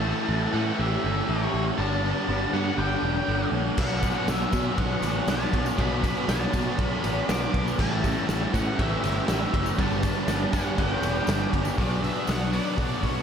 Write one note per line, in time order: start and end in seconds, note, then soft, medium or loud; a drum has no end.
0.00 0.12 A1 medium
0.00 0.28 A2 medium
0.00 0.28 E3 medium
0.00 0.52 A3 loud
0.00 0.29 A4 medium
0.00 0.55 A5 loud
0.04 0.30 G3 medium
0.04 0.55 A3 medium
0.04 0.30 C#4 medium
0.04 0.31 E4 medium
0.29 0.45 A1 medium
0.29 0.79 A2 medium
0.29 0.77 E3 medium
0.29 0.56 G3 loud
0.29 0.53 C#4 loud
0.29 0.51 E4 loud
0.29 0.52 A4 medium
0.53 0.70 A2 medium
0.53 1.78 E3 medium
0.53 0.79 G3 medium
0.53 1.81 A3 medium
0.53 1.55 A3 medium
0.53 0.80 C#4 medium
0.53 0.81 E4 medium
0.53 1.31 A4 medium
0.53 0.79 F#5 medium
0.57 1.78 A2 medium
0.79 0.96 A1 medium
0.79 1.05 E3 medium
0.79 1.05 G3 medium
0.79 1.04 C#4 medium
0.79 1.03 E4 medium
0.79 1.29 G4 medium
0.79 1.30 E5 loud
1.04 1.21 G1 medium
1.04 1.55 A2 medium
1.04 1.27 E3 medium
1.04 1.28 G3 medium
1.04 1.29 C#4 medium
1.04 1.30 E4 medium
1.28 1.46 A1 medium
1.28 1.77 E3 medium
1.28 1.55 G3 medium
1.28 1.54 C#4 medium
1.28 1.52 E4 medium
1.28 1.79 G4 medium
1.28 1.53 A4 medium
1.28 1.64 C#5 medium
1.53 1.70 A1 medium
1.53 1.78 G3 medium
1.53 1.79 A3 medium
1.53 1.78 C#4 medium
1.53 1.77 E4 medium
1.53 1.80 A4 medium
1.77 2.12 G1 loud
1.77 2.26 G2 loud
1.77 2.27 D3 medium
1.77 2.03 G3 loud
1.77 2.03 B3 loud
1.77 2.01 D4 medium
1.77 2.02 G4 loud
1.77 2.55 A5 loud
2.01 2.28 G3 medium
2.01 2.30 B3 medium
2.01 2.30 D4 medium
2.01 2.29 G4 medium
2.27 2.45 G1 medium
2.27 2.78 G2 medium
2.27 2.76 D3 loud
2.27 2.54 G3 medium
2.27 2.53 B3 medium
2.27 2.52 D4 medium
2.27 2.52 G4 medium
2.52 2.70 G2 medium
2.52 3.77 D3 medium
2.52 2.77 G3 medium
2.52 2.80 B3 medium
2.52 2.80 D4 medium
2.52 3.28 G4 medium
2.52 2.78 F#5 medium
2.57 3.79 G2 medium
2.77 2.95 G1 medium
2.77 3.03 D3 medium
2.77 3.03 G3 medium
2.77 3.03 B3 medium
2.77 3.02 D4 medium
2.77 3.29 A4 medium
2.77 3.49 G5 medium
3.02 3.20 E1 medium
3.02 3.54 G2 medium
3.02 3.26 D3 medium
3.02 3.26 G3 medium
3.02 3.29 B3 medium
3.02 3.30 D4 loud
3.27 3.45 G1 medium
3.27 3.76 D3 medium
3.27 3.53 G3 medium
3.27 3.53 B3 medium
3.27 3.51 D4 medium
3.27 3.52 G4 medium
3.27 4.08 A4 medium
3.51 3.69 A#1 medium
3.51 3.77 G3 medium
3.51 3.79 B3 medium
3.51 3.80 D4 medium
3.51 3.77 G4 medium
3.77 4.11 B1 medium
3.77 4.26 B2 medium
3.77 4.05 F#3 loud
3.77 4.03 B3 medium
3.77 4.02 D4 medium
3.77 4.02 F#4 loud
3.77 4.29 F#5 medium
3.77 kick loud
3.77 crash loud
3.77 tambourine soft
4.02 4.28 F#3 medium
4.02 4.28 B3 medium
4.02 4.29 D4 medium
4.02 4.29 F#4 medium
4.02 kick medium
4.02 ride medium
4.02 tambourine medium
4.27 4.45 B1 medium
4.27 4.77 B2 loud
4.27 4.55 F#3 loud
4.27 4.53 B3 medium
4.27 4.52 D4 loud
4.27 4.52 F#4 loud
4.27 4.79 E5 medium
4.27 snare loud
4.27 ride medium
4.27 tambourine medium
4.52 4.70 B2 medium
4.52 4.77 F#3 medium
4.52 4.78 B3 medium
4.52 4.79 D4 medium
4.52 5.27 F#4 medium
4.52 kick medium
4.52 ride medium
4.52 tambourine medium
4.56 5.76 B2 medium
4.77 4.95 B1 medium
4.77 5.04 B2 medium
4.77 5.03 F#3 medium
4.77 5.02 B3 medium
4.77 5.00 D4 medium
4.77 5.29 A4 medium
4.77 5.30 F#5 medium
4.77 kick loud
4.77 ride medium
5.02 5.19 A1 medium
5.02 5.25 B2 medium
5.02 5.27 F#3 medium
5.02 5.27 B3 medium
5.02 5.29 D4 loud
5.02 ride medium
5.02 tambourine medium
5.26 5.44 B1 medium
5.26 5.75 B2 medium
5.26 5.53 F#3 medium
5.26 5.52 B3 medium
5.26 5.50 D4 medium
5.26 5.50 F#4 medium
5.26 6.58 A4 medium
5.26 5.64 A5 loud
5.26 snare loud
5.26 ride loud
5.26 tambourine medium
5.41 tambourine soft
5.51 5.70 B1 loud
5.51 5.77 F#3 medium
5.51 5.77 B3 medium
5.51 5.78 D4 medium
5.51 5.79 F#4 medium
5.51 kick medium
5.51 ride medium
5.66 tambourine medium
5.76 6.12 B1 medium
5.76 6.27 B2 loud
5.76 6.04 F#3 medium
5.76 6.03 B3 loud
5.76 6.01 D4 medium
5.76 6.01 F#4 medium
5.76 kick loud
5.76 ride medium
5.76 tambourine soft
5.81 6.29 B5 loud
6.02 6.28 F#3 medium
6.02 6.29 B3 medium
6.02 6.30 D4 medium
6.02 6.27 F#4 medium
6.02 kick medium
6.02 ride medium
6.02 tambourine medium
6.16 tambourine soft
6.28 6.45 B1 medium
6.28 6.76 B2 medium
6.28 6.54 F#3 medium
6.28 6.53 B3 medium
6.28 6.51 D4 medium
6.28 6.51 F#4 loud
6.28 6.80 A5 medium
6.28 snare loud
6.28 ride loud
6.28 tambourine medium
6.52 6.70 B2 medium
6.52 6.78 F#3 medium
6.52 6.78 B3 medium
6.52 6.80 D4 medium
6.52 7.30 F#4 medium
6.52 kick medium
6.52 ride medium
6.52 tambourine medium
6.57 7.78 B2 medium
6.77 6.95 B1 loud
6.77 7.04 B2 medium
6.77 7.04 F#3 medium
6.77 7.03 B3 medium
6.77 7.01 D4 medium
6.77 7.28 A4 medium
6.77 kick loud
6.77 ride loud
6.81 7.31 B5 loud
7.03 7.20 A1 medium
7.03 7.26 B2 medium
7.03 7.27 F#3 medium
7.03 7.28 B3 medium
7.03 7.29 D4 loud
7.03 ride medium
7.03 tambourine medium
7.27 7.46 B1 medium
7.27 7.76 B2 medium
7.27 7.54 F#3 medium
7.27 7.53 B3 medium
7.27 7.51 D4 medium
7.27 7.81 A4 medium
7.27 snare loud
7.27 ride loud
7.27 tambourine medium
7.31 7.52 F#4 medium
7.31 7.65 D6 loud
7.52 7.70 B1 medium
7.52 7.78 F#3 medium
7.52 7.77 B3 medium
7.52 7.76 D4 medium
7.52 7.77 F#4 medium
7.52 kick medium
7.52 ride medium
7.68 tambourine medium
7.77 8.12 A1 loud
7.77 8.27 A2 loud
7.77 8.28 E3 loud
7.77 8.05 G3 loud
7.77 8.03 C#4 loud
7.77 8.02 E4 loud
7.77 8.02 G4 loud
7.77 8.55 A5 loud
7.77 kick loud
7.77 crash medium
7.77 tambourine soft
7.82 8.52 A3 loud
8.02 8.30 G3 medium
8.02 8.29 C#4 medium
8.02 8.30 E4 medium
8.02 8.29 G4 medium
8.02 kick loud
8.02 ride medium
8.02 tambourine medium
8.18 tambourine soft
8.28 8.45 A1 medium
8.28 8.78 A2 medium
8.28 8.77 E3 medium
8.28 8.56 G3 medium
8.28 8.54 C#4 loud
8.28 8.53 E4 loud
8.28 8.53 G4 medium
8.28 snare loud
8.28 ride medium
8.28 tambourine loud
8.53 8.70 A2 medium
8.53 9.79 A2 medium
8.53 9.78 E3 medium
8.53 8.78 G3 medium
8.53 9.81 A3 medium
8.53 8.79 C#4 medium
8.53 8.80 E4 medium
8.53 9.29 G4 medium
8.53 8.80 F#5 medium
8.53 kick medium
8.53 ride medium
8.53 tambourine medium
8.78 8.96 A1 medium
8.78 9.04 E3 medium
8.78 9.04 G3 medium
8.78 9.02 C#4 medium
8.78 9.02 E4 medium
8.78 9.28 G4 medium
8.78 9.27 E5 medium
8.78 kick loud
8.78 ride loud
9.03 9.20 G1 medium
9.03 9.54 A2 medium
9.03 9.26 E3 medium
9.03 9.28 G3 medium
9.03 9.28 C#4 medium
9.03 9.29 E4 medium
9.03 ride medium
9.03 tambourine medium
9.27 9.45 A1 medium
9.27 9.76 E3 medium
9.27 9.54 G3 medium
9.27 9.53 C#4 medium
9.27 9.51 E4 medium
9.27 9.79 G4 medium
9.27 9.51 G4 medium
9.27 9.63 E5 medium
9.27 snare loud
9.27 ride loud
9.27 tambourine medium
9.52 9.71 F#1 medium
9.52 9.78 G3 medium
9.52 9.77 C#4 medium
9.52 9.76 E4 medium
9.52 9.76 G4 medium
9.52 kick medium
9.52 ride medium
9.66 tambourine medium
9.77 10.12 G1 medium
9.77 10.26 G2 medium
9.77 10.26 D3 medium
9.77 10.03 G3 medium
9.77 10.02 B3 medium
9.77 10.00 D4 loud
9.77 10.02 G4 medium
9.77 10.53 A5 loud
9.77 kick loud
9.77 ride loud
9.77 tambourine soft
9.91 tambourine soft
10.01 10.27 G3 medium
10.01 10.28 B3 medium
10.01 10.28 D4 medium
10.01 10.28 G4 medium
10.01 kick loud
10.01 ride medium
10.01 tambourine medium
10.15 tambourine soft
10.27 10.45 G1 medium
10.27 10.78 G2 loud
10.27 10.75 D3 medium
10.27 10.53 G3 loud
10.27 10.53 B3 loud
10.27 10.51 D4 medium
10.27 10.50 G4 loud
10.27 snare loud
10.27 ride medium
10.27 tambourine medium
10.41 tambourine soft
10.51 10.70 G2 medium
10.51 10.76 G3 medium
10.51 10.78 B3 medium
10.51 10.78 D4 medium
10.51 11.26 G4 medium
10.51 10.78 F#5 medium
10.51 kick medium
10.51 ride medium
10.51 tambourine medium
10.56 11.78 G2 medium
10.56 11.77 D3 medium
10.76 10.95 G1 medium
10.76 11.02 D3 medium
10.76 11.02 G3 medium
10.76 11.01 B3 medium
10.76 11.00 D4 medium
10.76 11.27 A4 medium
10.76 11.49 G5 medium
10.76 kick loud
10.76 ride loud
10.76 tambourine soft
11.01 11.19 E1 medium
11.01 11.54 G2 medium
11.01 11.25 D3 medium
11.01 11.26 G3 medium
11.01 11.27 B3 medium
11.01 11.28 D4 medium
11.01 ride medium
11.01 tambourine medium
11.15 tambourine soft
11.27 11.45 G1 medium
11.27 11.76 D3 medium
11.27 11.53 G3 medium
11.27 11.52 B3 medium
11.27 11.50 D4 medium
11.27 11.50 G4 medium
11.27 11.78 A4 medium
11.27 snare loud
11.27 ride loud
11.27 tambourine medium
11.51 11.70 G1 medium
11.51 11.77 G3 medium
11.51 11.77 B3 medium
11.51 11.76 D4 medium
11.51 11.75 G4 medium
11.51 kick medium
11.51 ride medium
11.65 snare soft
11.65 tambourine medium
11.76 12.08 B1 medium
11.76 12.76 B2 medium
11.76 12.54 F#3 loud
11.76 12.53 B3 medium
11.76 12.51 D4 loud
11.76 12.02 F#4 loud
11.76 12.04 D5 medium
11.76 kick loud
11.76 open hi-hat medium
12.02 12.53 B3 medium
12.02 12.28 B3 medium
12.02 12.28 D4 medium
12.02 12.29 F#4 medium
12.02 12.29 E5 medium
12.02 open hi-hat medium
12.27 12.58 B1 medium
12.27 12.77 F#3 medium
12.27 13.22 F#3 medium
12.27 12.53 B3 medium
12.27 12.52 D4 medium
12.27 12.51 F#4 medium
12.27 12.54 F#5 medium
12.27 snare loud
12.27 open hi-hat medium
12.27 tambourine medium
12.52 12.76 F#3 medium
12.52 12.77 B3 medium
12.52 12.78 D4 medium
12.52 12.78 F#4 medium
12.52 13.02 D5 medium
12.52 open hi-hat medium
12.56 13.22 B2 medium
12.76 12.93 B1 medium
12.76 13.22 B2 medium
12.76 13.22 F#3 medium
12.76 13.22 B3 medium
12.76 13.22 D4 medium
12.76 13.01 F#4 medium
12.76 kick loud
12.76 open hi-hat medium
13.02 13.18 B1 medium
13.02 13.22 B3 medium
13.02 13.22 D4 medium
13.02 13.22 F#4 medium
13.02 13.22 A4 medium
13.02 13.22 C#5 medium
13.02 kick medium
13.02 open hi-hat medium